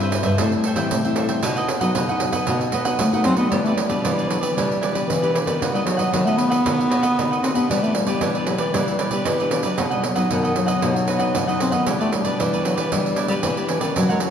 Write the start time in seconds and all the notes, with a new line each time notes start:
Already playing: G2 G3
0.00 C4 E4 B4 C5 E5, pandeiro
0.12 pandeiro
0.23 G2 B4 C5 E5, pandeiro
0.38 A2 G3 C4 E4 A4 C5 E5 G5, pandeiro
0.52 muted cavaquinho stroke, pandeiro
0.64 A4 C5 E5 G5, pandeiro
0.76 E3 G3 C4 E4 C5 E5 G5, pandeiro
0.91 A2 E3, pandeiro
1.05 G3 C4 E4 C5 E5 G5, pandeiro
1.16 A4 C5 E5 G5, pandeiro
1.29 C5 E5 G5, pandeiro
1.43 B2 B3 D#4 F#4 B4 D#5 F#5, pandeiro
1.56 B4 D#5 F#5, pandeiro
1.69 muted cavaquinho stroke, pandeiro
1.80 F#3 B3 D#4 F#4 B4 D#5 F#5, pandeiro
1.95 F#2 B2 F#4 B4 D#5 F#5, pandeiro
2.09 B3 D#4 F#4 B4 D#5 F#5, pandeiro
2.20 pandeiro
2.33 B2 B4 D#5 F#5, pandeiro
2.47 B2 B3 D#4 F#4 B4 D#5 F#5, pandeiro
2.61 muted cavaquinho stroke, pandeiro
2.72 B3 F#4 B4 D#5 F#5, pandeiro
2.85 B3 D#4 F#4 B4 D#5 F#5, pandeiro
2.99 F#2 A3, pandeiro
3.12 B3 D#4 F#4 B4 D#5 F#5, pandeiro
3.24 F#3 C4 F#4 B4 D#5 F#5, pandeiro
3.37 B3 B4 D#5 F#5, pandeiro
3.50 E3 G3 B3 D4 E4 G4, pandeiro
3.55 B4 D5
3.64 A3 B4 D5, pandeiro
3.69 G4
3.75 G3, muted cavaquinho stroke, pandeiro
3.89 B2 B3 D4 G4 B4 D5, pandeiro
4.04 B2 E3 E4 G4 B4 D5, pandeiro
4.18 G4 B4 D5, pandeiro
4.28 F#3 B3 D4 G4, pandeiro
4.40 E3 G4 B4 D5, pandeiro
4.56 E3 G3 B3 D4 E4 G4 B4 D5, pandeiro
4.70 muted cavaquinho stroke, pandeiro
4.81 E4 G4 B4 D5, pandeiro
4.93 G3 B3 D4 G4 B4 D5, pandeiro
5.08 B2 E3, pandeiro
5.22 B3 D4 G4 B4 D5, pandeiro
5.33 E3 E4 G4 B4 D5, pandeiro
5.45 D#3 E3 G4 B4 D5, pandeiro
5.61 D#3 B3 D#4 F#4 B4 D#5 F#5, pandeiro
5.74 G3 B3 D#4 F#4 B4 D#5 F#5, pandeiro
5.85 F#3 B3 D#4 F#4, muted cavaquinho stroke, pandeiro
5.97 F#3 B4 D#5 F#5, pandeiro
6.12 D#3 F#3 B3 D#4 F#4 B4 D#5 F#5, pandeiro
6.25 A3 B3 D#4 F#4 B4 D#5 F#5, pandeiro
6.37 B3, pandeiro
6.50 B3 D#4 F#4 B4 D#5 F#5, pandeiro
6.65 D#3 B3 D#4 F#4 B4 D#5 F#5, pandeiro
6.79 muted cavaquinho stroke, pandeiro
6.90 F#4 B4 D#5 F#5, pandeiro
7.02 B4 D#5 F#5, pandeiro
7.18 D#3 B3 D#4 F#4, pandeiro
7.31 B4 D#5 F#5, pandeiro
7.42 C4 F#4 B4 D#5 F#5, pandeiro
7.54 B2 B3 D4 G4 B4 D#5 F#5, pandeiro
7.70 E3 G3 E4 G4 B4 D5, pandeiro
7.82 A3 G4 B4 D5, pandeiro
7.94 G3, muted cavaquinho stroke, pandeiro
8.07 B2 B3 D4 G4 B4 D5, pandeiro
8.21 B2 E3 E4 G4 B4 D5, pandeiro
8.35 G4 B4 D5, pandeiro
8.47 F#3 B3 D4 G4, pandeiro
8.58 E3 G4 B4 D5, pandeiro
8.73 E3 G3 B3 D4 E4 G4 B4 D5, pandeiro
8.88 muted cavaquinho stroke, pandeiro
8.98 E4 G4 B4 D5, pandeiro
9.11 G3 B3 D4 G4 B4 D5, pandeiro
9.25 B2 E3, pandeiro
9.40 B3 D4 G4 B4 D5, pandeiro
9.50 E3 E4 G4 B4 D5, pandeiro
9.63 F#3 G4 B4 D5, pandeiro
9.77 B2 F#3 B3 D#4 F#4 B4 D#5 F#5, pandeiro
9.90 G3 B4 D#5 F#5, pandeiro
10.04 F#3, muted cavaquinho stroke, pandeiro
10.15 F#3 B3 D#4 B4 D#5 F#5, pandeiro
10.30 F#2 B2 D#3 F#4 B4 D#5 F#5, pandeiro
10.43 D#3 B4 D#5 F#5, pandeiro
10.56 F#3 B3 D#4, pandeiro
10.66 B4 D#5 F#5, pandeiro
10.81 B2 F#3 B3 D#4 F#4 B4 D#5 F#5, pandeiro
10.95 muted cavaquinho stroke, pandeiro
11.07 F#4 B4 D#5 F#5, pandeiro
11.19 F#3 B3 D#4 B4 D#5 F#5, pandeiro
11.35 F#2 B2, pandeiro
11.47 F#3 B3 D#4 B4 D#5 F#5, pandeiro
11.59 C4 F#4 B4 D#5 F#5, pandeiro
11.71 D#3 B3 B4 D#5 F#5, pandeiro
11.86 E3 G3 B3 D4 E4 G4 B4 D5, pandeiro
12.00 A3 G4 B4 D5, pandeiro
12.12 G3, muted cavaquinho stroke, pandeiro
12.24 B2 B3 D4 G4 B4 D5, pandeiro
12.39 B2 E3 E4 G4 B4 D5, pandeiro
12.53 G4 B4 D5, pandeiro
12.64 F#3 B3 D4 G4, pandeiro
12.76 E3 G4 B4 D5, pandeiro
12.91 E3 G3 B3 D4 E4 G4 B4 D5, pandeiro
13.05 muted cavaquinho stroke, pandeiro
13.16 E4 G4 B4 D5, pandeiro
13.28 G3 B3 D4 G4 B4 D5, pandeiro
13.43 B2 E3, pandeiro
13.57 B3 D4 G4 B4 D5, pandeiro
13.69 E3 E4 G4 B4 D5, pandeiro
13.80 D#3 E3 A#3 C#4 G4 B4 D5, pandeiro
13.96 F#2 F#3 E4 A#4 C#5 F#5, pandeiro
14.09 G#3 A#4 C#5 F#5, pandeiro
14.20 F#3, muted cavaquinho stroke, pandeiro